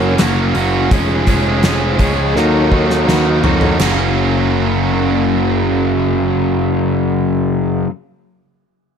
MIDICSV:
0, 0, Header, 1, 5, 480
1, 0, Start_track
1, 0, Key_signature, 6, "major"
1, 0, Tempo, 721154
1, 606, Time_signature, 4, 2, 24, 8
1, 5976, End_track
2, 0, Start_track
2, 0, Title_t, "Tonewheel organ"
2, 0, Program_c, 0, 16
2, 0, Note_on_c, 0, 54, 50
2, 0, Note_on_c, 0, 58, 50
2, 0, Note_on_c, 0, 61, 54
2, 98, Note_off_c, 0, 54, 0
2, 100, Note_off_c, 0, 58, 0
2, 100, Note_off_c, 0, 61, 0
2, 600, Note_on_c, 0, 53, 44
2, 606, Note_on_c, 0, 56, 41
2, 609, Note_on_c, 0, 61, 50
2, 1297, Note_off_c, 0, 53, 0
2, 1300, Note_on_c, 0, 72, 54
2, 1301, Note_off_c, 0, 56, 0
2, 1302, Note_off_c, 0, 61, 0
2, 1327, Note_on_c, 0, 68, 66
2, 1328, Note_off_c, 0, 72, 0
2, 1329, Note_on_c, 0, 73, 77
2, 1551, Note_off_c, 0, 68, 0
2, 1561, Note_off_c, 0, 73, 0
2, 1566, Note_on_c, 0, 54, 42
2, 1569, Note_on_c, 0, 70, 37
2, 1572, Note_on_c, 0, 63, 49
2, 1575, Note_on_c, 0, 69, 56
2, 1585, Note_on_c, 0, 73, 66
2, 1795, Note_off_c, 0, 69, 0
2, 1809, Note_off_c, 0, 73, 0
2, 1813, Note_on_c, 0, 69, 55
2, 1817, Note_on_c, 0, 73, 77
2, 2034, Note_off_c, 0, 69, 0
2, 2045, Note_off_c, 0, 73, 0
2, 2051, Note_on_c, 0, 66, 67
2, 2058, Note_on_c, 0, 71, 81
2, 2261, Note_off_c, 0, 54, 0
2, 2263, Note_off_c, 0, 70, 0
2, 2264, Note_off_c, 0, 63, 0
2, 2273, Note_off_c, 0, 66, 0
2, 2286, Note_off_c, 0, 71, 0
2, 2294, Note_on_c, 0, 69, 62
2, 2301, Note_on_c, 0, 73, 69
2, 2515, Note_off_c, 0, 69, 0
2, 2527, Note_off_c, 0, 73, 0
2, 5976, End_track
3, 0, Start_track
3, 0, Title_t, "Distorted electric guitar"
3, 0, Program_c, 1, 30
3, 0, Note_on_c, 1, 54, 74
3, 0, Note_on_c, 1, 58, 83
3, 0, Note_on_c, 1, 61, 85
3, 0, Note_on_c, 1, 66, 83
3, 111, Note_off_c, 1, 54, 0
3, 112, Note_off_c, 1, 58, 0
3, 115, Note_off_c, 1, 61, 0
3, 118, Note_off_c, 1, 66, 0
3, 119, Note_on_c, 1, 54, 80
3, 120, Note_on_c, 1, 58, 79
3, 123, Note_on_c, 1, 61, 88
3, 126, Note_on_c, 1, 66, 85
3, 354, Note_off_c, 1, 54, 0
3, 356, Note_off_c, 1, 58, 0
3, 358, Note_off_c, 1, 61, 0
3, 361, Note_off_c, 1, 66, 0
3, 362, Note_on_c, 1, 54, 67
3, 364, Note_on_c, 1, 58, 66
3, 366, Note_on_c, 1, 61, 68
3, 369, Note_on_c, 1, 66, 75
3, 590, Note_off_c, 1, 54, 0
3, 591, Note_off_c, 1, 58, 0
3, 592, Note_off_c, 1, 61, 0
3, 593, Note_off_c, 1, 66, 0
3, 607, Note_on_c, 1, 53, 76
3, 609, Note_on_c, 1, 56, 74
3, 610, Note_on_c, 1, 61, 82
3, 613, Note_on_c, 1, 68, 83
3, 835, Note_off_c, 1, 53, 0
3, 837, Note_off_c, 1, 56, 0
3, 841, Note_off_c, 1, 68, 0
3, 842, Note_off_c, 1, 61, 0
3, 843, Note_on_c, 1, 53, 64
3, 845, Note_on_c, 1, 56, 66
3, 849, Note_on_c, 1, 68, 71
3, 850, Note_on_c, 1, 61, 73
3, 1076, Note_off_c, 1, 53, 0
3, 1079, Note_off_c, 1, 56, 0
3, 1081, Note_off_c, 1, 61, 0
3, 1084, Note_off_c, 1, 68, 0
3, 1084, Note_on_c, 1, 53, 93
3, 1087, Note_on_c, 1, 56, 95
3, 1089, Note_on_c, 1, 61, 93
3, 1092, Note_on_c, 1, 68, 100
3, 1316, Note_off_c, 1, 53, 0
3, 1320, Note_off_c, 1, 56, 0
3, 1321, Note_off_c, 1, 61, 0
3, 1323, Note_off_c, 1, 68, 0
3, 1324, Note_on_c, 1, 53, 64
3, 1328, Note_on_c, 1, 56, 64
3, 1329, Note_on_c, 1, 61, 69
3, 1331, Note_on_c, 1, 68, 77
3, 1552, Note_off_c, 1, 53, 0
3, 1553, Note_off_c, 1, 56, 0
3, 1554, Note_off_c, 1, 61, 0
3, 1555, Note_off_c, 1, 68, 0
3, 1562, Note_on_c, 1, 51, 75
3, 1567, Note_on_c, 1, 58, 79
3, 1569, Note_on_c, 1, 63, 79
3, 1571, Note_on_c, 1, 66, 74
3, 1792, Note_off_c, 1, 51, 0
3, 1796, Note_off_c, 1, 58, 0
3, 1797, Note_off_c, 1, 63, 0
3, 1800, Note_on_c, 1, 51, 64
3, 1801, Note_off_c, 1, 66, 0
3, 1804, Note_on_c, 1, 58, 69
3, 1805, Note_on_c, 1, 63, 64
3, 1809, Note_on_c, 1, 66, 68
3, 2033, Note_off_c, 1, 51, 0
3, 2035, Note_off_c, 1, 58, 0
3, 2038, Note_off_c, 1, 63, 0
3, 2039, Note_off_c, 1, 66, 0
3, 2041, Note_on_c, 1, 51, 74
3, 2043, Note_on_c, 1, 58, 81
3, 2046, Note_on_c, 1, 63, 78
3, 2047, Note_on_c, 1, 66, 80
3, 2272, Note_off_c, 1, 51, 0
3, 2274, Note_off_c, 1, 58, 0
3, 2277, Note_off_c, 1, 63, 0
3, 2277, Note_off_c, 1, 66, 0
3, 2280, Note_on_c, 1, 51, 67
3, 2282, Note_on_c, 1, 58, 73
3, 2285, Note_on_c, 1, 63, 57
3, 2285, Note_on_c, 1, 66, 67
3, 2510, Note_off_c, 1, 51, 0
3, 2511, Note_off_c, 1, 58, 0
3, 2512, Note_off_c, 1, 63, 0
3, 2513, Note_off_c, 1, 66, 0
3, 2514, Note_on_c, 1, 42, 69
3, 2523, Note_on_c, 1, 49, 71
3, 2527, Note_on_c, 1, 54, 74
3, 2532, Note_on_c, 1, 58, 78
3, 2537, Note_on_c, 1, 61, 69
3, 2541, Note_on_c, 1, 66, 81
3, 5231, Note_off_c, 1, 42, 0
3, 5240, Note_off_c, 1, 49, 0
3, 5244, Note_off_c, 1, 54, 0
3, 5249, Note_off_c, 1, 58, 0
3, 5253, Note_off_c, 1, 61, 0
3, 5258, Note_off_c, 1, 66, 0
3, 5976, End_track
4, 0, Start_track
4, 0, Title_t, "Picked electric bass"
4, 0, Program_c, 2, 34
4, 0, Note_on_c, 2, 30, 75
4, 108, Note_off_c, 2, 30, 0
4, 133, Note_on_c, 2, 30, 75
4, 360, Note_off_c, 2, 30, 0
4, 369, Note_on_c, 2, 30, 84
4, 598, Note_off_c, 2, 30, 0
4, 608, Note_on_c, 2, 29, 71
4, 838, Note_off_c, 2, 29, 0
4, 850, Note_on_c, 2, 29, 69
4, 1078, Note_off_c, 2, 29, 0
4, 1091, Note_on_c, 2, 29, 66
4, 1319, Note_off_c, 2, 29, 0
4, 1330, Note_on_c, 2, 37, 69
4, 1559, Note_off_c, 2, 37, 0
4, 1565, Note_on_c, 2, 39, 70
4, 2026, Note_off_c, 2, 39, 0
4, 2052, Note_on_c, 2, 39, 73
4, 2280, Note_off_c, 2, 39, 0
4, 2290, Note_on_c, 2, 41, 73
4, 2519, Note_off_c, 2, 41, 0
4, 2529, Note_on_c, 2, 30, 72
4, 5219, Note_off_c, 2, 30, 0
4, 5976, End_track
5, 0, Start_track
5, 0, Title_t, "Drums"
5, 122, Note_on_c, 9, 46, 61
5, 127, Note_on_c, 9, 38, 93
5, 188, Note_off_c, 9, 46, 0
5, 194, Note_off_c, 9, 38, 0
5, 364, Note_on_c, 9, 46, 46
5, 431, Note_off_c, 9, 46, 0
5, 608, Note_on_c, 9, 36, 86
5, 608, Note_on_c, 9, 46, 56
5, 674, Note_off_c, 9, 36, 0
5, 675, Note_off_c, 9, 46, 0
5, 844, Note_on_c, 9, 46, 44
5, 847, Note_on_c, 9, 36, 66
5, 910, Note_off_c, 9, 46, 0
5, 913, Note_off_c, 9, 36, 0
5, 1084, Note_on_c, 9, 46, 50
5, 1089, Note_on_c, 9, 38, 83
5, 1150, Note_off_c, 9, 46, 0
5, 1155, Note_off_c, 9, 38, 0
5, 1324, Note_on_c, 9, 46, 38
5, 1327, Note_on_c, 9, 36, 71
5, 1390, Note_off_c, 9, 46, 0
5, 1393, Note_off_c, 9, 36, 0
5, 1573, Note_on_c, 9, 38, 45
5, 1639, Note_off_c, 9, 38, 0
5, 1808, Note_on_c, 9, 36, 48
5, 1874, Note_off_c, 9, 36, 0
5, 1931, Note_on_c, 9, 38, 49
5, 1998, Note_off_c, 9, 38, 0
5, 2053, Note_on_c, 9, 38, 58
5, 2120, Note_off_c, 9, 38, 0
5, 2287, Note_on_c, 9, 43, 67
5, 2354, Note_off_c, 9, 43, 0
5, 2403, Note_on_c, 9, 43, 66
5, 2469, Note_off_c, 9, 43, 0
5, 2525, Note_on_c, 9, 49, 68
5, 2531, Note_on_c, 9, 38, 73
5, 2592, Note_off_c, 9, 49, 0
5, 2597, Note_off_c, 9, 38, 0
5, 5976, End_track
0, 0, End_of_file